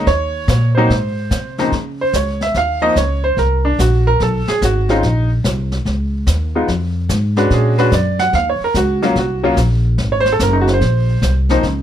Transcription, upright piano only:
0.07 C#5
0.75 F#3 A#3 C4 D#4 C5
1.59 C#2 F3 A#3 C4 D#4
2.01 C5
2.16 C#5
2.42 E5
2.57 F5
2.82 F3 A#3 C4 D#4 D#5
2.97 C#5
3.24 C5
3.39 A#4
3.65 D4
3.80 F#4
4.07 A#4
4.22 A4
4.49 G#4
4.64 F#4
4.89 G#3 C4 C#4 D#4 F4
6.55 G#3 B3 D#4 F4
7.37 G#3 C#4 D4 F#4 B4
7.53 G#4
7.78 G#3 C#4 D4 F#4 B4
7.94 D5
8.20 F#5
8.35 F5
8.49 C#5
8.64 A#4
8.77 F#4
9.02 F#3 A#3 C#4 F4
9.18 F#4
9.43 F#3 A#3 C#4 F4
10.12 C#5
10.20 C5
10.32 A4
10.43 A#4
10.53 D#4
10.61 F#4
10.73 C5
11.50 F3 A#3 C4 D#4

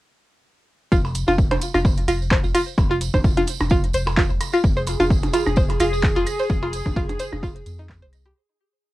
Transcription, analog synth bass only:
0.92 F1
1.28 F1
1.74 F1
2.08 F1
2.44 F1
2.78 F1
3.14 F1
3.60 F1
3.94 F1
4.30 F1
4.64 F1
5.00 F1
5.46 F1
5.80 F1
6.16 F1
6.50 F1
6.86 F1
7.33 F1
7.66 F2
8.02 C2

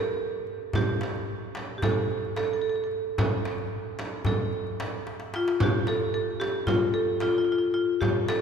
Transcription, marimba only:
Already playing: A4
0.76 G4
1.78 G4
1.83 A4
2.37 A4
2.45 A4
2.53 A4
2.62 A4
2.70 A4
2.76 A4
2.84 A4
3.19 A4
4.27 A4
5.36 F4
5.63 G4
5.88 A4
6.14 A4
6.40 G4
6.67 F4
6.94 A4
7.22 F4
7.31 F4
7.38 F4
7.45 F4
7.52 F4
7.58 F4
7.74 F4
8.01 G4
8.29 A4

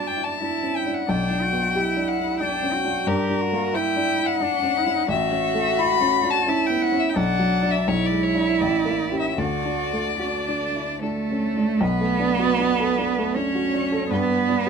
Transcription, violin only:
0.07 G5
0.24 A5
0.76 G5
0.94 F#5
1.09 G5
2.08 F#5
2.39 G5
3.08 A#4
3.75 G5
4.26 F#5
5.11 E5
5.79 B5
6.31 A5
6.66 G5
6.82 F#5
7.00 E5
7.09 G5
7.17 F#5
7.71 E5
7.88 C#5
8.06 D5
8.23 C#5
8.60 D5
9.19 E5
9.29 E5
9.38 D5
11.03 A4
11.82 B4
13.36 C#5
14.10 B4

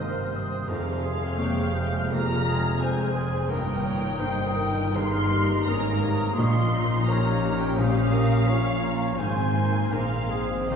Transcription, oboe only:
0.00 C5
0.69 A#4
1.04 G#4
1.38 C#5
1.74 C5
2.11 A#4
2.46 G#4
2.82 C5
3.15 G#4
3.50 A#4
4.20 C5
4.96 A#4
6.37 D#5
7.07 C#5
7.78 C5
8.12 A#4
8.47 C#5
9.18 C5
9.93 A#4
10.31 G#4
10.71 G4

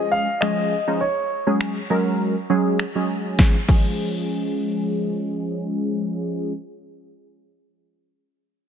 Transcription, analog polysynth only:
Already playing: F3 G#3 C#4 G#4
0.42 F3 G#3 C#4 G#4
0.87 F3 G#3 C#4 D#4
1.47 F#3 G#3 C#4 G#4
1.90 F#3 G#3 C#4 A#4
2.50 F#3 G#3 C#4 G#4
2.95 F#3 G#3 C#4 G#4
3.39 F3 G#3 C#4 G#4
3.69 F3 G#3 C#4 G#4

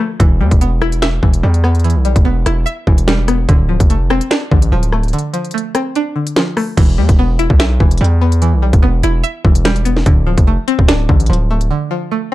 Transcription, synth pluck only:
Already playing: D3 F3 C4 D4
0.00 A3
0.20 E3
0.41 G3
0.61 B3
0.82 E4
1.02 E5
1.23 E3
1.43 G3
1.64 B3
1.84 E3
2.05 G3
2.25 B3
2.46 E4
2.66 E5
2.87 E3
3.08 G3
3.28 B3
3.49 D3
3.69 F3
3.90 A3
4.10 C4
4.31 D4
4.52 D3
4.72 F3
4.93 A3
5.13 D3
5.33 F3
5.54 A3
5.75 C4
5.96 D4
6.16 D3
6.37 F3
6.57 A3
6.77 E3
6.98 G3
7.19 B3
7.39 E4
7.60 E5
7.81 E3
8.01 G3
8.21 B3
8.42 E3
8.62 G3
8.83 B3
9.03 E4
9.23 E5
9.45 E3
9.65 G3
9.85 B3
10.06 D3
10.27 F3
10.47 A3
10.68 C4
10.88 D4
11.09 D3
11.30 F3
11.51 A3
11.71 D3
11.91 F3
12.11 A3

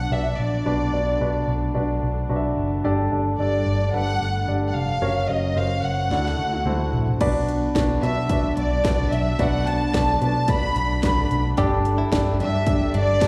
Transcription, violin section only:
Already playing: F#5
0.12 E5
0.40 D5
3.40 D5
3.94 F#5
4.68 F#5
4.76 F5
5.30 D#5
5.57 F5
5.84 F#5
8.03 E5
8.58 D5
9.13 E5
9.41 F#5
9.68 A5
10.23 A5
10.50 B5
11.05 B5
12.42 E5
12.97 D5

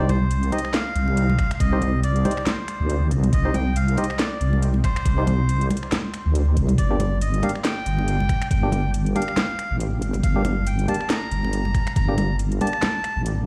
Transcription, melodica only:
0.09 C5
0.52 D#5
0.74 F5
1.54 F5
1.60 D#5
2.03 D5
2.47 C5
3.33 D#5
3.55 G5
3.76 F5
3.98 D#5
4.19 D5
4.84 C5
6.78 D5
7.21 D#5
7.43 F5
7.65 G5
8.51 G5
9.16 F5
10.24 F5
10.67 G5
10.88 A5
11.10 A#5
11.96 A#5
12.61 A5

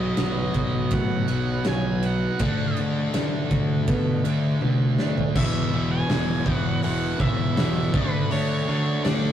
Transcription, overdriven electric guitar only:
Already playing: B2 F#3 B3
2.40 D3 A3 D4
5.36 E2 B2 E3
5.73 E2 B2 E3
6.09 E2 B2 E3
6.46 E2 B2 E3
6.84 E2 B2 E3
7.21 E2 B2 E3
7.57 E2 B2 E3
7.94 D3 A3 D4
8.31 D3 A3 D4
8.68 D3 A3 D4
9.05 D3 A3 D4

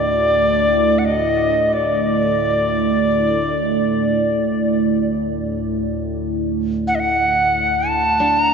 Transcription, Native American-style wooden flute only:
Already playing: D5
0.99 F#5
1.05 D#5
1.73 D5
6.88 F#5
6.95 D#5
7.00 F#5
7.88 A5

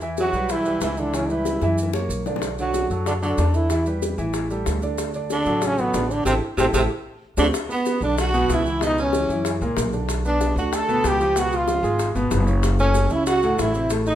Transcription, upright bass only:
Already playing: E2
0.32 B1
0.81 C#2
1.61 F#2
2.09 B1
2.90 F#2
3.38 E2
4.18 A1
4.67 D2
5.46 A1
5.94 A1
6.25 A1
6.57 A1
6.73 A1
7.37 D2
8.01 B1
8.49 C#2
9.29 F#2
9.61 C#2
9.77 B1
10.56 D2
11.04 C#2
11.83 G#1
12.15 G#1
12.31 F#1
13.10 C#2
13.58 A1

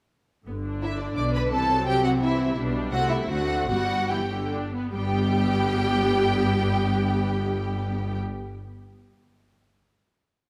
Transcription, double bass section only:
0.46 G1
1.17 B1
1.52 C2
2.57 B1
2.93 C2
3.30 D2
3.70 G1
4.95 G1

